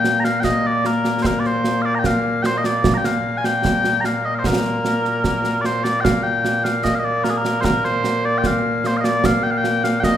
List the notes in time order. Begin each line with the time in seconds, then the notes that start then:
Already playing: A#2 A#3 G5
0.04 snare
0.20 A#5
0.24 F5, snare
0.40 G5
0.44 D#5, concert bass drum, snare
0.66 D5
0.85 A#4, snare
1.05 snare
1.23 A#4 C5, concert bass drum, snare
1.40 D5
1.45 C5, snare
1.64 snare
1.82 D5 F5
1.95 G5 A#5
2.04 F5, concert bass drum, snare
2.42 C5 G5, snare
2.57 D#5
2.64 D5, snare
2.84 concert bass drum, snare
2.94 G5 A#5
3.04 F5, snare
3.38 G#5
3.44 G5, snare
3.65 concert bass drum, snare
3.84 snare
4.01 A#5, snare
4.05 F5
4.25 D#5
4.35 C5 F5
4.44 A#4, concert bass drum, snare
4.65 snare
4.85 snare
5.05 snare
5.24 concert bass drum, snare
5.44 snare
5.61 D5, snare
5.66 C5
5.84 D5, snare
6.01 F5 G5
6.05 concert bass drum, snare
6.23 G5
6.45 snare
6.64 F5, snare
6.84 D#5, concert bass drum, snare
6.95 F5
7.00 D#5
7.04 D5
7.24 A#4, snare
7.30 G#4
7.37 A#4
7.45 snare
7.61 A#4 C5, concert bass drum, snare
7.84 C5, snare
8.04 snare
8.25 D5
8.38 G5
8.44 F5, concert bass drum, snare
8.84 C5, snare
8.97 D#5 F5
9.04 D5, snare
9.24 F5, concert bass drum, snare
9.43 G5
9.51 F5
9.58 G5
9.64 snare
9.84 F5, snare
10.00 G5, concert bass drum, snare
10.04 D#5